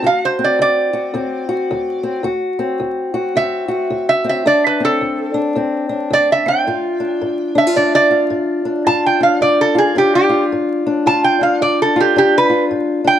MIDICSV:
0, 0, Header, 1, 3, 480
1, 0, Start_track
1, 0, Tempo, 550459
1, 32, Time_signature, 4, 2, 24, 8
1, 11504, End_track
2, 0, Start_track
2, 0, Title_t, "Resonator guitar played with a steel bar"
2, 0, Program_c, 0, 25
2, 57, Note_on_c, 0, 77, 84
2, 201, Note_off_c, 0, 77, 0
2, 220, Note_on_c, 0, 72, 77
2, 362, Note_off_c, 0, 72, 0
2, 387, Note_on_c, 0, 74, 73
2, 526, Note_off_c, 0, 74, 0
2, 537, Note_on_c, 0, 74, 93
2, 1933, Note_off_c, 0, 74, 0
2, 2935, Note_on_c, 0, 76, 96
2, 3549, Note_off_c, 0, 76, 0
2, 3567, Note_on_c, 0, 76, 85
2, 3718, Note_off_c, 0, 76, 0
2, 3744, Note_on_c, 0, 76, 82
2, 3888, Note_off_c, 0, 76, 0
2, 3898, Note_on_c, 0, 74, 92
2, 4044, Note_off_c, 0, 74, 0
2, 4068, Note_on_c, 0, 71, 76
2, 4210, Note_off_c, 0, 71, 0
2, 4226, Note_on_c, 0, 69, 85
2, 4680, Note_off_c, 0, 69, 0
2, 5349, Note_on_c, 0, 74, 88
2, 5491, Note_off_c, 0, 74, 0
2, 5512, Note_on_c, 0, 76, 85
2, 5652, Note_on_c, 0, 79, 85
2, 5653, Note_off_c, 0, 76, 0
2, 6579, Note_off_c, 0, 79, 0
2, 6610, Note_on_c, 0, 76, 89
2, 6761, Note_off_c, 0, 76, 0
2, 6770, Note_on_c, 0, 74, 80
2, 6922, Note_off_c, 0, 74, 0
2, 6932, Note_on_c, 0, 74, 103
2, 7177, Note_off_c, 0, 74, 0
2, 7732, Note_on_c, 0, 81, 99
2, 7882, Note_off_c, 0, 81, 0
2, 7904, Note_on_c, 0, 79, 77
2, 8046, Note_off_c, 0, 79, 0
2, 8050, Note_on_c, 0, 77, 81
2, 8201, Note_off_c, 0, 77, 0
2, 8213, Note_on_c, 0, 74, 94
2, 8363, Note_off_c, 0, 74, 0
2, 8380, Note_on_c, 0, 69, 90
2, 8526, Note_off_c, 0, 69, 0
2, 8532, Note_on_c, 0, 68, 85
2, 8682, Note_off_c, 0, 68, 0
2, 8703, Note_on_c, 0, 67, 89
2, 8843, Note_off_c, 0, 67, 0
2, 8853, Note_on_c, 0, 67, 96
2, 9097, Note_off_c, 0, 67, 0
2, 9653, Note_on_c, 0, 81, 97
2, 9801, Note_off_c, 0, 81, 0
2, 9805, Note_on_c, 0, 79, 80
2, 9958, Note_off_c, 0, 79, 0
2, 9966, Note_on_c, 0, 77, 77
2, 10118, Note_off_c, 0, 77, 0
2, 10132, Note_on_c, 0, 74, 92
2, 10281, Note_off_c, 0, 74, 0
2, 10306, Note_on_c, 0, 69, 85
2, 10448, Note_off_c, 0, 69, 0
2, 10468, Note_on_c, 0, 67, 93
2, 10609, Note_off_c, 0, 67, 0
2, 10624, Note_on_c, 0, 67, 97
2, 10767, Note_off_c, 0, 67, 0
2, 10793, Note_on_c, 0, 71, 101
2, 11026, Note_off_c, 0, 71, 0
2, 11401, Note_on_c, 0, 79, 98
2, 11504, Note_off_c, 0, 79, 0
2, 11504, End_track
3, 0, Start_track
3, 0, Title_t, "Steel-string acoustic guitar"
3, 0, Program_c, 1, 25
3, 22, Note_on_c, 1, 38, 71
3, 36, Note_on_c, 1, 66, 65
3, 339, Note_on_c, 1, 60, 62
3, 471, Note_off_c, 1, 38, 0
3, 514, Note_on_c, 1, 38, 66
3, 810, Note_off_c, 1, 66, 0
3, 813, Note_on_c, 1, 66, 62
3, 957, Note_off_c, 1, 38, 0
3, 991, Note_on_c, 1, 38, 78
3, 994, Note_off_c, 1, 60, 0
3, 997, Note_on_c, 1, 60, 61
3, 1293, Note_off_c, 1, 66, 0
3, 1296, Note_on_c, 1, 66, 64
3, 1436, Note_off_c, 1, 38, 0
3, 1488, Note_on_c, 1, 38, 78
3, 1770, Note_off_c, 1, 60, 0
3, 1773, Note_on_c, 1, 60, 60
3, 1925, Note_off_c, 1, 38, 0
3, 1945, Note_on_c, 1, 38, 72
3, 1951, Note_off_c, 1, 66, 0
3, 1954, Note_on_c, 1, 66, 72
3, 1971, Note_off_c, 1, 60, 0
3, 2258, Note_on_c, 1, 60, 61
3, 2394, Note_off_c, 1, 38, 0
3, 2437, Note_on_c, 1, 38, 70
3, 2733, Note_off_c, 1, 66, 0
3, 2737, Note_on_c, 1, 66, 65
3, 2881, Note_off_c, 1, 38, 0
3, 2925, Note_on_c, 1, 38, 74
3, 2930, Note_off_c, 1, 60, 0
3, 2933, Note_on_c, 1, 60, 58
3, 3202, Note_off_c, 1, 66, 0
3, 3212, Note_on_c, 1, 66, 66
3, 3365, Note_off_c, 1, 38, 0
3, 3404, Note_on_c, 1, 38, 81
3, 3689, Note_off_c, 1, 60, 0
3, 3700, Note_on_c, 1, 60, 64
3, 3845, Note_off_c, 1, 38, 0
3, 3857, Note_off_c, 1, 66, 0
3, 3861, Note_off_c, 1, 60, 0
3, 3884, Note_on_c, 1, 38, 76
3, 3887, Note_on_c, 1, 62, 68
3, 4187, Note_on_c, 1, 60, 59
3, 4325, Note_off_c, 1, 38, 0
3, 4368, Note_on_c, 1, 38, 68
3, 4654, Note_off_c, 1, 62, 0
3, 4658, Note_on_c, 1, 62, 72
3, 4807, Note_off_c, 1, 38, 0
3, 4840, Note_off_c, 1, 60, 0
3, 4843, Note_on_c, 1, 38, 73
3, 4851, Note_on_c, 1, 60, 55
3, 5136, Note_off_c, 1, 62, 0
3, 5139, Note_on_c, 1, 62, 64
3, 5285, Note_off_c, 1, 38, 0
3, 5323, Note_on_c, 1, 38, 77
3, 5619, Note_off_c, 1, 60, 0
3, 5631, Note_on_c, 1, 60, 59
3, 5765, Note_off_c, 1, 38, 0
3, 5788, Note_off_c, 1, 60, 0
3, 5814, Note_on_c, 1, 43, 68
3, 5816, Note_off_c, 1, 62, 0
3, 5820, Note_on_c, 1, 65, 68
3, 6104, Note_on_c, 1, 62, 61
3, 6252, Note_off_c, 1, 43, 0
3, 6291, Note_on_c, 1, 43, 67
3, 6582, Note_off_c, 1, 65, 0
3, 6585, Note_off_c, 1, 62, 0
3, 6585, Note_on_c, 1, 62, 65
3, 6686, Note_off_c, 1, 62, 0
3, 6686, Note_on_c, 1, 65, 51
3, 6729, Note_off_c, 1, 43, 0
3, 6761, Note_on_c, 1, 43, 67
3, 6767, Note_on_c, 1, 62, 61
3, 7057, Note_off_c, 1, 65, 0
3, 7068, Note_on_c, 1, 65, 66
3, 7204, Note_off_c, 1, 43, 0
3, 7239, Note_on_c, 1, 43, 76
3, 7541, Note_off_c, 1, 62, 0
3, 7544, Note_on_c, 1, 62, 61
3, 7683, Note_off_c, 1, 43, 0
3, 7729, Note_off_c, 1, 65, 0
3, 7729, Note_on_c, 1, 43, 75
3, 7732, Note_on_c, 1, 65, 69
3, 8023, Note_off_c, 1, 62, 0
3, 8026, Note_on_c, 1, 62, 63
3, 8168, Note_off_c, 1, 43, 0
3, 8203, Note_on_c, 1, 43, 72
3, 8498, Note_off_c, 1, 65, 0
3, 8501, Note_on_c, 1, 65, 68
3, 8645, Note_off_c, 1, 43, 0
3, 8677, Note_on_c, 1, 43, 72
3, 8681, Note_off_c, 1, 62, 0
3, 8684, Note_on_c, 1, 62, 64
3, 8966, Note_off_c, 1, 65, 0
3, 8976, Note_on_c, 1, 65, 65
3, 9123, Note_off_c, 1, 43, 0
3, 9176, Note_on_c, 1, 43, 75
3, 9471, Note_off_c, 1, 62, 0
3, 9475, Note_on_c, 1, 62, 63
3, 9610, Note_off_c, 1, 43, 0
3, 9619, Note_off_c, 1, 65, 0
3, 9644, Note_on_c, 1, 43, 80
3, 9649, Note_on_c, 1, 65, 73
3, 9947, Note_off_c, 1, 62, 0
3, 9951, Note_on_c, 1, 62, 61
3, 10084, Note_off_c, 1, 43, 0
3, 10125, Note_on_c, 1, 43, 71
3, 10416, Note_off_c, 1, 65, 0
3, 10428, Note_on_c, 1, 65, 70
3, 10564, Note_off_c, 1, 43, 0
3, 10602, Note_off_c, 1, 62, 0
3, 10603, Note_on_c, 1, 43, 78
3, 10605, Note_on_c, 1, 62, 65
3, 10886, Note_off_c, 1, 65, 0
3, 10896, Note_on_c, 1, 65, 67
3, 11043, Note_off_c, 1, 43, 0
3, 11081, Note_on_c, 1, 43, 75
3, 11364, Note_off_c, 1, 62, 0
3, 11375, Note_on_c, 1, 62, 60
3, 11504, Note_off_c, 1, 43, 0
3, 11504, Note_off_c, 1, 62, 0
3, 11504, Note_off_c, 1, 65, 0
3, 11504, End_track
0, 0, End_of_file